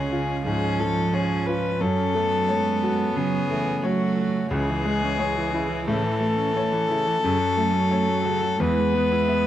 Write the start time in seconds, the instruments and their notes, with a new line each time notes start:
Already playing: grand piano C#2 G#3 C#5, cello C#3, viola C#4, harmonium C#4 F4 G#5, violin G#4
0.11 cello C#3, grand piano F4
0.44 grand piano G#2, cello F3, viola C#4, violin G#4
0.79 grand piano F3, violin A4
1.13 viola C#4, violin G#4, grand piano C#5
1.46 grand piano F4, violin B4
1.80 grand piano F#2, cello F#3, viola C#4, harmonium F#4 C#5, violin A4
2.14 grand piano A3, viola B3
2.49 cello G#3, grand piano C#5
2.83 grand piano F#4
3.16 grand piano C#3, cello F#3, violin G#4
3.51 cello E3, grand piano A3
3.83 cello F#3, viola A3, violin F#4, grand piano C#5
4.18 grand piano F#4
4.51 grand piano C#2, viola C#3, cello E3, harmonium C#4 E4 G#4, violin G#4
4.69 viola E3
4.85 grand piano G#3, viola G#3
5.04 viola C#4
5.19 viola G#3, grand piano C#5
5.35 viola E3
5.52 viola C#3, grand piano E4
5.69 viola E3
5.87 grand piano A2, viola C#3, harmonium A4, violin A4
6.03 viola E3
6.20 viola A3, grand piano A3
6.37 viola C#4
6.54 viola A3, grand piano C#5
6.72 viola E3
6.89 viola C#3, grand piano E4
7.07 viola E3
7.22 grand piano F#2, viola C#3, cello F#3, harmonium F#4
7.39 viola F#3
7.57 viola A3, grand piano A3
7.74 viola C#4
7.91 viola A3, grand piano C#5
8.09 viola F#3
8.25 viola C#3, grand piano F#4
8.42 viola F#3
8.58 grand piano E2, viola E3, cello G#3, harmonium B3 E4 G#4, violin B4
8.78 viola G#3
8.93 grand piano B3, viola B3
9.12 viola E4
9.27 viola B3, grand piano E5